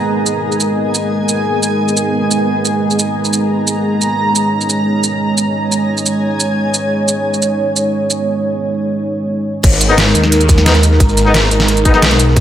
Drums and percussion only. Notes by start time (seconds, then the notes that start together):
0.26 shaker
0.52 shaker
0.60 shaker
0.95 shaker
1.29 shaker
1.63 shaker
1.88 shaker
1.97 shaker
2.31 shaker
2.65 shaker
2.91 shaker
2.99 shaker
3.25 shaker
3.33 shaker
3.67 shaker
4.01 shaker
4.35 shaker
4.61 shaker
4.70 shaker
5.04 shaker
5.38 shaker
5.72 shaker
5.97 shaker
6.06 shaker
6.40 shaker
6.74 shaker
7.08 shaker
7.34 shaker
7.42 shaker
7.76 shaker
8.10 shaker
9.63 kick, closed hi-hat, crash
9.72 snare, shaker
9.81 closed hi-hat, shaker
9.89 snare
9.97 snare, closed hi-hat, open hi-hat
10.08 snare
10.15 closed hi-hat, shaker
10.24 snare
10.32 closed hi-hat
10.41 closed hi-hat, shaker
10.49 kick, snare, closed hi-hat, shaker
10.58 snare
10.66 snare, closed hi-hat
10.75 snare, closed hi-hat
10.83 closed hi-hat, shaker
10.91 snare
11.00 kick, closed hi-hat
11.09 closed hi-hat, shaker
11.17 closed hi-hat, shaker
11.25 snare
11.34 snare, closed hi-hat
11.43 snare
11.51 closed hi-hat, shaker
11.60 snare
11.68 closed hi-hat
11.77 closed hi-hat, shaker
11.85 kick, closed hi-hat, shaker
11.94 snare
12.02 snare, closed hi-hat
12.11 snare, closed hi-hat
12.20 closed hi-hat, shaker
12.28 snare
12.36 kick, closed hi-hat